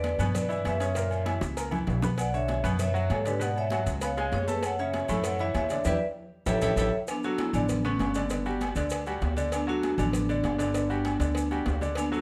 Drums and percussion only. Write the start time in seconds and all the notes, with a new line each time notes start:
0.04 cowbell, high conga, low timbale, low agogo, maracas
0.19 high conga, low conga, low agogo, maracas
0.35 cowbell, high conga, low conga, maracas
0.50 high conga, low agogo, maracas
0.65 cowbell, high conga, low timbale, low agogo, maracas
0.80 cowbell, high conga, low agogo, maracas
0.95 cowbell, high conga, maracas
1.11 high conga, low agogo, maracas
1.26 cowbell, high conga, low timbale, low agogo, maracas
1.41 cowbell, high bongo, high conga, maracas
1.57 cowbell, low agogo, maracas
1.71 low bongo, low conga, low agogo, maracas
1.87 cowbell, low conga, low timbale, maracas
2.02 low bongo, low conga, low agogo, maracas
2.18 cowbell, high conga, low agogo, maracas
2.34 maracas
2.48 cowbell, high conga, low timbale, low agogo, maracas
2.64 high conga, low conga, low agogo, maracas
2.79 cowbell, high conga, low conga, maracas
2.95 high conga, low agogo, maracas
3.10 cowbell, high conga, low timbale, low agogo, maracas
3.26 cowbell, high conga, low agogo, maracas
3.41 cowbell, high conga, maracas
3.56 high conga, low agogo, maracas
3.70 cowbell, high conga, low timbale, low agogo, maracas
3.87 cowbell, high conga, maracas
4.01 cowbell, low agogo, maracas
4.17 high conga, low agogo, maracas
4.32 cowbell, high conga, low timbale, maracas
4.48 high conga, low agogo, maracas
4.63 cowbell, high conga, low agogo, maracas
4.78 high conga, maracas
4.94 cowbell, high conga, low timbale, low agogo, maracas
5.08 high conga, low conga, low agogo, maracas
5.24 cowbell, high conga, maracas
5.39 high conga, low agogo, maracas
5.54 cowbell, high conga, low timbale, low agogo, maracas
5.69 cowbell, high conga, low agogo, maracas
5.85 cowbell, low conga, high timbale, maracas
6.46 cowbell, low conga, high timbale, maracas
6.62 cowbell, low conga, high timbale, maracas
6.77 cowbell, low conga, high timbale, maracas
7.08 cowbell, high conga, low agogo, maracas
7.23 high conga, maracas
7.38 cowbell, high conga, low timbale, low agogo, maracas
7.54 high conga, low conga, low agogo, maracas
7.69 cowbell, high conga, low conga, maracas
7.84 high conga, low agogo, maracas
7.99 cowbell, high conga, low timbale, low agogo, maracas
8.14 cowbell, high conga, low agogo, maracas
8.30 cowbell, high conga, maracas
8.45 high conga, low agogo, maracas
8.61 cowbell, high conga, low timbale, low agogo, maracas
8.76 cowbell, high conga, maracas
8.90 cowbell, high conga, low agogo, maracas
9.06 high conga, low agogo, maracas
9.21 cowbell, high conga, low timbale, maracas
9.37 high conga, low agogo, maracas
9.52 cowbell, high conga, low agogo, maracas
9.68 high conga, maracas
9.83 cowbell, high conga, low timbale, low agogo, maracas
9.98 high conga, low conga, low agogo, maracas
10.13 cowbell, high conga, low conga, maracas
10.28 high conga, low agogo, maracas
10.44 cowbell, high conga, low timbale, low agogo, maracas
10.58 cowbell, high conga, low agogo, maracas
10.74 cowbell, high conga, maracas
10.90 high conga, low agogo, maracas
11.05 cowbell, high conga, low timbale, low agogo, maracas
11.20 cowbell, high conga, maracas
11.35 cowbell, high conga, low agogo, maracas
11.51 high conga, low agogo, maracas
11.66 cowbell, high conga, low timbale, maracas
11.81 high conga, low agogo, maracas
11.95 cowbell, high conga, low agogo, maracas
12.13 maracas